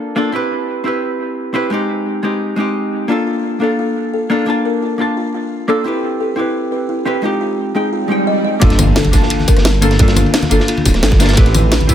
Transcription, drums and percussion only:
8.62 kick, closed hi-hat, ride
8.70 snare, closed hi-hat
8.79 cross-stick, closed hi-hat, ride, tambourine, high conga
8.96 snare, closed hi-hat, ride
9.05 closed hi-hat, high conga
9.13 kick, snare, closed hi-hat, ride, tambourine
9.22 snare, high bongo
9.30 closed hi-hat, ride
9.39 snare, high conga
9.48 kick, closed hi-hat, ride, tambourine
9.57 cross-stick, snare, closed hi-hat
9.65 snare, closed hi-hat, ride
9.82 cross-stick, closed hi-hat, ride, tambourine
9.91 snare, closed hi-hat
9.99 kick, closed hi-hat, ride
10.08 snare, closed hi-hat
10.16 cross-stick, closed hi-hat, ride, tambourine, high conga
10.26 ride
10.34 snare, closed hi-hat, ride
10.42 snare, closed hi-hat, high conga
10.51 closed hi-hat, ride, tambourine
10.60 snare, high bongo
10.68 closed hi-hat, ride
10.77 ride, high conga
10.86 kick, snare, closed hi-hat, ride, tambourine, high bongo
10.94 cross-stick, snare, closed hi-hat
11.03 snare, closed hi-hat, ride
11.11 kick, snare, high bongo
11.20 snare, closed hi-hat, ride, tambourine
11.25 snare, closed hi-hat, ride, tambourine
11.29 snare, ride
11.33 snare, ride
11.37 kick, closed hi-hat, ride
11.46 snare, closed hi-hat
11.55 cross-stick, closed hi-hat, ride, tambourine, high conga
11.72 snare, closed hi-hat, ride
11.80 closed hi-hat, high conga
11.89 kick, closed hi-hat, ride, tambourine

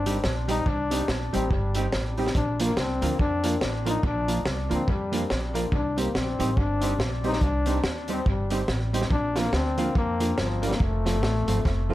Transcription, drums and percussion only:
0.06 closed hi-hat
0.24 snare
0.49 closed hi-hat
0.66 kick
0.91 closed hi-hat
1.08 snare
1.34 closed hi-hat
1.51 kick
1.75 closed hi-hat
1.92 snare
2.17 open hi-hat
2.27 snare
2.34 kick, hi-hat pedal
2.60 closed hi-hat
2.77 snare
3.02 closed hi-hat
3.19 kick
3.44 closed hi-hat
3.61 snare
3.86 closed hi-hat
4.03 kick
4.28 closed hi-hat
4.46 snare
4.71 closed hi-hat
4.88 kick
5.13 closed hi-hat
5.30 snare
5.55 closed hi-hat
5.72 kick
5.98 closed hi-hat
6.15 snare
6.40 closed hi-hat
6.57 kick
6.82 closed hi-hat
7.00 snare
7.24 open hi-hat
7.33 snare
7.41 kick, hi-hat pedal
7.66 closed hi-hat
7.84 snare
8.08 closed hi-hat
8.26 kick
8.50 closed hi-hat
8.68 snare
8.94 closed hi-hat
9.01 snare
9.10 kick
9.36 snare, closed hi-hat
9.53 snare
9.78 closed hi-hat
9.95 kick
10.20 closed hi-hat
10.38 snare
10.63 closed hi-hat
10.71 snare
10.80 kick
11.06 snare, closed hi-hat
11.23 snare
11.48 closed hi-hat
11.65 kick, snare

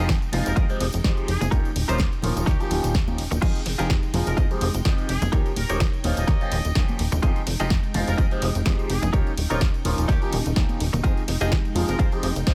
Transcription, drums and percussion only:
0.09 kick, snare, closed hi-hat, tambourine
0.22 closed hi-hat, tambourine
0.32 open hi-hat, ride, high conga, low conga
0.46 closed hi-hat, tambourine
0.56 kick, closed hi-hat, tambourine
0.69 closed hi-hat, tambourine
0.80 open hi-hat, ride
0.92 closed hi-hat, tambourine
1.04 kick, snare, closed hi-hat, tambourine
1.17 closed hi-hat, tambourine
1.28 open hi-hat, ride
1.41 closed hi-hat, tambourine, high conga, low conga
1.52 kick, closed hi-hat, tambourine
1.65 closed hi-hat, tambourine
1.76 open hi-hat, ride
1.89 closed hi-hat, tambourine
1.98 kick, snare, closed hi-hat, tambourine
2.12 closed hi-hat, tambourine
2.22 open hi-hat, ride, high conga, low conga
2.37 closed hi-hat, tambourine
2.47 kick, snare, closed hi-hat, tambourine
2.60 closed hi-hat, tambourine
2.70 open hi-hat, ride, high conga, low conga
2.84 closed hi-hat, tambourine
2.94 kick, snare, closed hi-hat, tambourine
3.08 closed hi-hat, tambourine, high conga
3.18 open hi-hat, ride
3.31 closed hi-hat, tambourine, high conga, low conga
3.42 kick, closed hi-hat, crash, tambourine
3.55 closed hi-hat, tambourine
3.66 snare, open hi-hat, ride
3.79 closed hi-hat, tambourine
3.90 kick, snare, closed hi-hat, tambourine
4.03 closed hi-hat, tambourine
4.14 open hi-hat, ride, high conga, low conga
4.27 closed hi-hat, tambourine
4.37 kick, closed hi-hat, tambourine
4.51 closed hi-hat, tambourine
4.61 open hi-hat, ride
4.74 closed hi-hat, tambourine
4.85 kick, snare, closed hi-hat, tambourine
4.98 closed hi-hat, tambourine
5.09 open hi-hat, ride
5.22 closed hi-hat, tambourine, high conga, low conga
5.33 kick, closed hi-hat, tambourine
5.46 closed hi-hat, tambourine
5.56 open hi-hat, ride
5.69 closed hi-hat, tambourine
5.80 kick, snare, closed hi-hat
5.93 closed hi-hat, tambourine
6.04 open hi-hat, ride, high conga, low conga
6.17 closed hi-hat, tambourine
6.28 kick, snare, closed hi-hat
6.41 closed hi-hat, tambourine
6.52 open hi-hat, ride
6.65 closed hi-hat, tambourine
6.75 kick, snare, closed hi-hat, tambourine
6.88 closed hi-hat, tambourine, high conga
6.99 open hi-hat, ride
7.12 closed hi-hat, tambourine, high conga, low conga
7.23 kick, closed hi-hat, tambourine
7.36 closed hi-hat, tambourine
7.47 snare, open hi-hat, ride
7.60 closed hi-hat, tambourine
7.70 kick, snare, closed hi-hat, tambourine
7.83 closed hi-hat, tambourine
7.94 open hi-hat, ride, high conga, low conga
8.08 closed hi-hat, tambourine
8.18 kick, closed hi-hat, tambourine
8.31 closed hi-hat, tambourine
8.42 open hi-hat, ride
8.55 closed hi-hat, tambourine
8.65 kick, snare, closed hi-hat, tambourine
8.79 closed hi-hat, tambourine
8.90 open hi-hat, ride
9.02 closed hi-hat, tambourine, high conga, low conga
9.13 kick, closed hi-hat, tambourine
9.27 closed hi-hat, tambourine
9.38 open hi-hat, ride
9.50 closed hi-hat, tambourine
9.61 kick, snare, closed hi-hat, tambourine
9.74 closed hi-hat, tambourine
9.85 open hi-hat, ride, high conga, low conga
9.98 closed hi-hat, tambourine
10.09 kick, snare, closed hi-hat, tambourine
10.22 closed hi-hat, tambourine
10.32 open hi-hat, ride, high conga, low conga
10.46 closed hi-hat, tambourine
10.56 kick, snare, closed hi-hat, tambourine
10.69 closed hi-hat, tambourine, high conga
10.80 open hi-hat, ride
10.94 closed hi-hat, tambourine, high conga, low conga
11.04 kick, closed hi-hat, tambourine
11.17 closed hi-hat, tambourine
11.28 snare, open hi-hat, ride
11.41 closed hi-hat, tambourine
11.52 kick, snare, closed hi-hat
11.65 closed hi-hat, tambourine
11.75 open hi-hat, ride, high conga, low conga
11.88 closed hi-hat, tambourine
11.99 kick, closed hi-hat, tambourine
12.12 closed hi-hat, tambourine
12.23 open hi-hat, ride
12.36 closed hi-hat, tambourine
12.47 kick, snare, closed hi-hat, tambourine

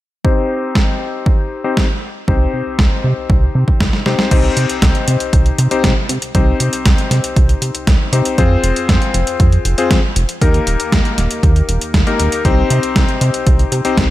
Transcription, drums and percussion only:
0.25 kick
0.75 kick, snare
1.26 kick
1.77 kick, snare
2.28 kick
2.79 kick, snare
3.30 kick
3.68 kick
3.80 kick, snare
3.93 snare
4.06 snare
4.19 snare
4.31 kick, closed hi-hat, crash
4.57 closed hi-hat
4.70 closed hi-hat
4.82 kick, snare, closed hi-hat
4.95 closed hi-hat
5.08 closed hi-hat
5.20 closed hi-hat
5.33 kick, closed hi-hat
5.46 closed hi-hat
5.58 closed hi-hat
5.71 closed hi-hat
5.84 kick, snare, closed hi-hat
6.09 closed hi-hat
6.22 closed hi-hat
6.35 kick, closed hi-hat
6.60 closed hi-hat
6.73 closed hi-hat
6.86 kick, snare, closed hi-hat
6.98 closed hi-hat
7.11 snare, closed hi-hat
7.24 closed hi-hat
7.36 kick, closed hi-hat
7.49 closed hi-hat
7.62 closed hi-hat
7.75 closed hi-hat
7.87 kick, snare, closed hi-hat
8.13 closed hi-hat
8.25 closed hi-hat
8.38 kick, closed hi-hat
8.64 closed hi-hat
8.76 closed hi-hat
8.89 kick, snare, closed hi-hat
9.02 closed hi-hat
9.14 closed hi-hat
9.27 closed hi-hat
9.40 kick, closed hi-hat
9.52 closed hi-hat
9.65 closed hi-hat
9.78 closed hi-hat
9.91 kick, snare, closed hi-hat
10.16 closed hi-hat
10.29 closed hi-hat
10.42 kick, closed hi-hat
10.54 closed hi-hat
10.67 closed hi-hat
10.80 closed hi-hat
10.92 kick, snare, closed hi-hat
11.05 closed hi-hat
11.18 snare, closed hi-hat
11.31 closed hi-hat
11.43 kick, closed hi-hat
11.56 closed hi-hat
11.69 closed hi-hat
11.81 closed hi-hat
11.94 kick, snare, closed hi-hat
12.07 closed hi-hat
12.20 closed hi-hat
12.32 closed hi-hat
12.45 kick, closed hi-hat
12.70 closed hi-hat
12.83 closed hi-hat
12.96 kick, snare, closed hi-hat
13.09 closed hi-hat
13.21 closed hi-hat
13.34 closed hi-hat
13.47 kick, closed hi-hat
13.59 closed hi-hat
13.72 closed hi-hat
13.85 closed hi-hat
13.97 kick, snare, closed hi-hat

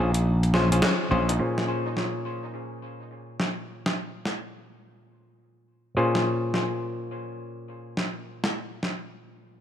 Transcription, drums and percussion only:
0.14 closed hi-hat
0.43 closed hi-hat
0.54 snare
0.72 closed hi-hat
0.82 snare
1.29 closed hi-hat
1.58 snare
1.97 snare
3.40 snare
3.86 snare
4.25 snare
6.15 snare
6.54 snare
7.97 snare
8.44 snare
8.83 snare

